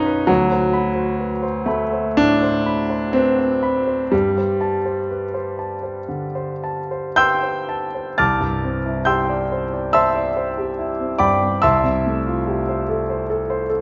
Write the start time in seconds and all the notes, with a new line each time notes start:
Already playing: F#2 C#4 D#4 A#4 B4 A#5
0.06 B4
0.27 D2 F#3
0.52 C5
0.73 B5
0.95 C5
1.19 B4
1.42 C5
1.66 A3 B5
1.92 C5
2.17 A2 D4
2.43 C5
2.66 B5
2.90 C5
3.13 C4 B4
3.38 C5
3.63 B5
3.87 C5
4.12 G2 G3
4.38 C5
4.61 A5
4.85 C5
5.10 B4
5.34 C5
5.59 A5
5.83 C5
6.08 D3
6.35 C5
6.64 A5
6.91 C5
7.16 B4 G5 C6 E6 G6
7.43 C5
7.69 A5
7.94 C5
8.18 C2 A5 D6 F6 A6
8.40 G2
8.64 C4
8.86 E4
9.05 G4 G5 C6 E6 G6
9.29 D5
9.52 C5
9.73 D5
9.93 C5 E5 A5 C6 E6
10.15 D5
10.37 C5
10.58 G4
10.79 E4
11.00 C4
11.19 G2 D5 G5 B5 D6
11.42 C4
11.62 C2 E5 A5 C6 E6
11.84 C3
12.07 A3
12.26 F4
12.48 G4
12.69 C5
12.89 A4
13.10 C5
13.30 A4
13.50 C5
13.69 A4